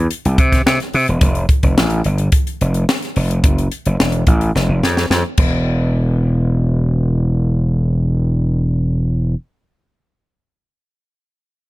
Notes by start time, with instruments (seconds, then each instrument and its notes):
0.11 closed hi-hat
0.25 slap bass C2, closed hi-hat
0.38 slap bass C3, kick, closed hi-hat
0.52 kick, snare, closed hi-hat
0.66 slap bass C3, snare
0.80 snare, closed hi-hat
0.93 slap bass C3, open hi-hat
1.08 slap bass E1, closed hi-hat
1.21 slap bass F1, kick, closed hi-hat
1.35 closed hi-hat
1.49 kick, closed hi-hat
1.63 slap bass F1, kick, closed hi-hat
1.78 slap bass A1, snare
1.90 closed hi-hat
2.04 slap bass G1, closed hi-hat
2.18 closed hi-hat
2.32 kick, closed hi-hat
2.47 closed hi-hat
2.61 slap bass F1, closed hi-hat
2.74 closed hi-hat
2.89 snare
3.02 snare, closed hi-hat
3.16 slap bass F1, open hi-hat
3.31 closed hi-hat
3.44 slap bass F#1, kick, closed hi-hat
3.58 closed hi-hat
3.72 closed hi-hat
3.86 slap bass F#1, closed hi-hat
4.00 slap bass E1, snare
4.12 closed hi-hat
4.27 slap bass A1, kick, closed hi-hat
4.41 closed hi-hat
4.55 slap bass F1, snare
4.69 slap bass F1
4.83 slap bass F2, snare
4.97 snare
5.10 slap bass F2, snare
5.37 slap bass E1, kick, crash